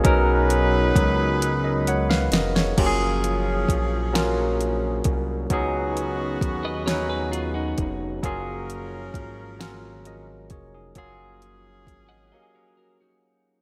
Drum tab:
CC |------------|x-----------|------------|------------|
HH |x-x-x-x-x-x-|--x-x-x-x-x-|x-x-x-x-x-x-|x-x-x-x-x-x-|
SD |---------ooo|------o-----|------o-----|------o-----|
BD |o---o-------|o---o-----o-|o---o-----o-|o---o-----o-|

CC |------------|
HH |x-x-x-------|
SD |------------|
BD |o---o-------|